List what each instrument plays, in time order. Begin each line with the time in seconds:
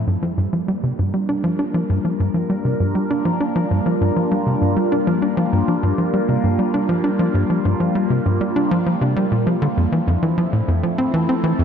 Already playing: analog synth pad C4
0.07 analog synth bass G2, analog synth pad G3
0.23 analog synth bass F3
0.34 analog synth bass G2, analog synth pad A#3
0.52 analog synth bass F3, analog synth pad D4
0.68 analog synth bass G3
0.81 analog synth bass C3, analog synth pad F4
0.94 analog synth pad A#4
0.99 analog synth bass G2
1.14 analog synth bass G3
1.29 analog synth bass D4
1.44 analog synth bass F3
1.59 analog synth bass D4
1.74 analog synth bass F3
1.90 analog synth bass G2
2.05 analog synth bass F3
2.20 analog synth bass G2
2.34 analog synth bass F3
2.50 analog synth bass G3
2.65 analog synth bass C3
2.80 analog synth bass G2
2.95 analog synth bass G3
3.11 analog synth bass D4
3.25 analog synth bass F3
3.41 analog synth bass D4
3.56 analog synth bass F3
3.71 analog synth bass G2
3.86 analog synth bass F3
4.01 analog synth bass G2
4.16 analog synth bass F3
4.31 analog synth bass G3
4.46 analog synth bass C3
4.61 analog synth bass G2
4.76 analog synth bass G3
4.92 analog synth bass D4
5.07 analog synth bass F3
5.22 analog synth bass D4
5.37 analog synth bass F3
5.53 analog synth bass G2
5.68 analog synth bass F3
5.83 analog synth bass G2
5.98 analog synth bass F3
6.14 analog synth bass G3
6.29 analog synth bass C3
6.44 analog synth bass G2
6.59 analog synth bass G3
6.74 analog synth bass D4
6.89 analog synth bass F3
7.04 analog synth bass D4
7.19 analog synth bass F3
7.34 analog synth bass G2
7.50 analog synth bass F3
7.65 analog synth bass G2
7.80 analog synth bass F3
7.95 analog synth bass G3
8.10 analog synth bass C3
8.26 analog synth bass G2
8.41 analog synth bass G3
8.56 analog synth bass D4
8.71 analog synth bass F3
8.86 analog synth bass F3
9.01 analog synth bass C3
9.16 analog synth bass G3
9.32 analog synth bass A#2
9.47 analog synth bass F3
9.62 analog synth bass D3
9.77 analog synth bass F2, analog synth pad F3
9.92 analog synth bass E3, analog synth pad E4
10.07 analog synth bass F2
10.16 analog synth pad C4
10.21 analog synth bass E3, analog synth pad A3
10.38 analog synth bass F3
10.53 analog synth bass A2
10.65 analog synth bass F2, analog synth pad A4
10.83 analog synth bass F3
10.98 analog synth bass C4
11.14 analog synth bass E3
11.29 analog synth bass C4
11.44 analog synth bass E3
11.59 analog synth bass F2